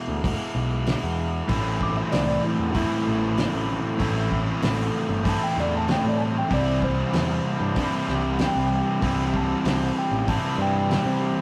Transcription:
Already playing: overdriven electric guitar E2 B2 E3 G#3 B3 E4
0.08 picked electric bass D2
0.23 overdriven electric guitar E2 B2 E3 G#3 B3 E4, kick, open hi-hat
0.55 picked electric bass B1
0.87 snare, open hi-hat
1.03 picked electric bass E2
1.48 picked electric bass A1, overdriven electric guitar A2 E3 A3 C4 E4, kick, open hi-hat
1.81 tine electric piano D6, kick
1.97 tine electric piano E5
2.12 picked electric bass C2, tine electric piano D5, snare, open hi-hat
2.28 tine electric piano D5
2.44 tine electric piano E4
2.59 picked electric bass E2
2.71 overdriven electric guitar A2 E3 A3, tine electric piano D#4, kick, open hi-hat
2.75 overdriven electric guitar C4 E4, tine electric piano E4
3.07 picked electric bass A1
3.37 snare, open hi-hat
3.53 picked electric bass A1
3.98 picked electric bass A1, overdriven electric guitar A2 E3 A3 C4 E4, kick, open hi-hat
4.32 kick
4.62 picked electric bass A1, snare, open hi-hat
5.09 picked electric bass G1
5.24 overdriven electric guitar A2 E3 A3 C4 E4, kick, open hi-hat
5.29 tine electric piano A5
5.44 tine electric piano G5
5.57 picked electric bass E2, tine electric piano D5, snare
5.77 tine electric piano A5
5.88 tine electric piano G5, snare, open hi-hat
6.04 picked electric bass A2
6.09 tine electric piano D5
6.18 tine electric piano G#5 A5
6.38 tine electric piano G5
6.49 picked electric bass C2, overdriven electric guitar C3 E3 G3 C4 E4, kick, open hi-hat
6.54 tine electric piano D5
6.82 tine electric piano C5, kick
7.13 picked electric bass E2, snare, open hi-hat
7.60 picked electric bass G2
7.75 overdriven electric guitar C3 E3 G3 C4 E4, kick, open hi-hat
8.08 picked electric bass C2, snare
8.39 snare, open hi-hat
8.46 tine electric piano G5
8.55 picked electric bass C2
9.01 picked electric bass C2, overdriven electric guitar C3 E3 G3 C4 E4, kick, open hi-hat
9.34 tine electric piano A5, kick
9.64 picked electric bass C2, snare, open hi-hat
9.99 tine electric piano G5
10.11 picked electric bass A1
10.28 overdriven electric guitar C3 E3 G3 C4 E4, tine electric piano A5, kick, open hi-hat
10.58 picked electric bass G2, tine electric piano G5
10.91 snare, open hi-hat
11.05 picked electric bass C3

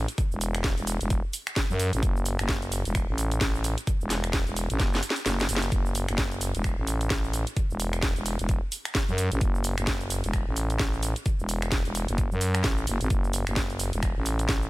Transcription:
0.08 closed hi-hat, shaker
0.18 kick, closed hi-hat, shaker
0.32 fm bass E1, shaker
0.41 open hi-hat, shaker
0.55 finger snap, closed hi-hat, shaker
0.64 kick, snare, closed hi-hat, shaker
0.78 fm bass E1, closed hi-hat, shaker
0.87 open hi-hat, shaker
1.01 fm bass E1, closed hi-hat, shaker
1.10 kick, closed hi-hat, shaker
1.33 open hi-hat, shaker
1.47 finger snap, closed hi-hat, shaker
1.56 kick, snare, open hi-hat, shaker
1.70 fm bass F#2, shaker
1.80 open hi-hat, shaker
1.93 fm bass A1, closed hi-hat, shaker
2.03 fm bass F#1, kick, closed hi-hat, shaker
2.16 shaker
2.26 open hi-hat, shaker
2.39 fm bass F#1, finger snap, closed hi-hat, shaker
2.49 kick, snare, closed hi-hat, shaker
2.62 closed hi-hat, shaker
2.72 open hi-hat, shaker
2.85 fm bass E1, closed hi-hat, shaker
2.95 finger snap, kick, closed hi-hat, shaker
3.08 fm bass A1
3.18 open hi-hat, shaker
3.32 closed hi-hat, shaker
3.41 fm bass A1, kick, snare, closed hi-hat, shaker
3.55 shaker
3.64 open hi-hat, shaker
3.78 closed hi-hat, shaker
3.87 kick, closed hi-hat, shaker
4.01 fm bass E1, shaker
4.10 snare, open hi-hat, shaker
4.24 finger snap, closed hi-hat, shaker
4.33 kick, snare, closed hi-hat, shaker
4.47 fm bass E1, closed hi-hat, shaker
4.56 open hi-hat, shaker
4.70 fm bass A1, closed hi-hat, shaker
4.80 fm bass F#1, kick, snare, closed hi-hat, shaker
4.93 snare, shaker
5.03 open hi-hat, shaker
5.10 snare
5.16 closed hi-hat, shaker
5.26 fm bass F#1, snare, open hi-hat, shaker
5.39 snare, shaker
5.49 fm bass F#1, open hi-hat, shaker
5.57 snare
5.62 closed hi-hat, shaker
5.72 fm bass F#1, kick, closed hi-hat, shaker
5.86 shaker
5.95 open hi-hat, shaker
6.08 fm bass F#1, finger snap, closed hi-hat, shaker
6.18 kick, snare, closed hi-hat, shaker
6.32 closed hi-hat, shaker
6.41 open hi-hat, shaker
6.55 fm bass E1, closed hi-hat, shaker
6.64 finger snap, kick, closed hi-hat, shaker
6.78 fm bass A1
6.87 open hi-hat, shaker
7.01 closed hi-hat, shaker
7.10 fm bass A1, kick, snare, closed hi-hat, shaker
7.24 shaker
7.33 open hi-hat, shaker
7.47 closed hi-hat, shaker
7.57 kick, closed hi-hat, shaker
7.70 fm bass E1, shaker
7.80 open hi-hat, shaker
7.93 finger snap, closed hi-hat, shaker
8.03 kick, snare, closed hi-hat, shaker
8.16 fm bass E1, closed hi-hat, shaker
8.26 open hi-hat, shaker
8.39 fm bass E1, closed hi-hat, shaker
8.49 kick, closed hi-hat, shaker
8.72 open hi-hat, shaker
8.85 finger snap, closed hi-hat, shaker
8.95 kick, snare, open hi-hat, shaker
9.08 fm bass F#2, shaker
9.18 open hi-hat, shaker
9.32 fm bass A1, closed hi-hat, shaker
9.41 fm bass F#1, kick, closed hi-hat, shaker
9.55 shaker
9.64 open hi-hat, shaker
9.78 fm bass F#1, finger snap, closed hi-hat, shaker
9.87 kick, snare, closed hi-hat, shaker
10.01 closed hi-hat, shaker
10.10 open hi-hat, shaker
10.24 fm bass E1, closed hi-hat, shaker
10.33 finger snap, kick, closed hi-hat, shaker
10.47 fm bass A1
10.56 open hi-hat, shaker
10.70 closed hi-hat, shaker
10.79 fm bass A1, kick, snare, closed hi-hat, shaker
10.93 shaker
11.03 open hi-hat, shaker
11.16 closed hi-hat, shaker
11.26 kick, closed hi-hat, shaker
11.39 fm bass E1, shaker
11.49 open hi-hat, shaker
11.62 finger snap, closed hi-hat, shaker
11.72 kick, snare, closed hi-hat, shaker
11.85 fm bass E1, closed hi-hat, shaker
11.95 open hi-hat, shaker
12.08 fm bass F#1, closed hi-hat, shaker
12.18 kick, closed hi-hat, shaker
12.32 fm bass F#2, shaker
12.41 open hi-hat, shaker
12.55 finger snap, closed hi-hat, shaker
12.64 fm bass A1, kick, snare, open hi-hat, shaker
12.78 shaker
12.87 fm bass F#1, open hi-hat, shaker
13.01 fm bass G#1, closed hi-hat, shaker
13.10 fm bass F#1, kick, closed hi-hat, shaker
13.24 shaker
13.33 open hi-hat, shaker
13.47 fm bass F#1, finger snap, closed hi-hat, shaker
13.56 kick, snare, closed hi-hat, shaker
13.70 closed hi-hat, shaker
13.80 open hi-hat, shaker
13.93 fm bass E1, closed hi-hat, shaker
14.03 finger snap, kick, closed hi-hat, shaker
14.16 fm bass A1
14.26 open hi-hat, shaker
14.39 closed hi-hat, shaker
14.49 fm bass A1, kick, snare, closed hi-hat, shaker
14.63 shaker

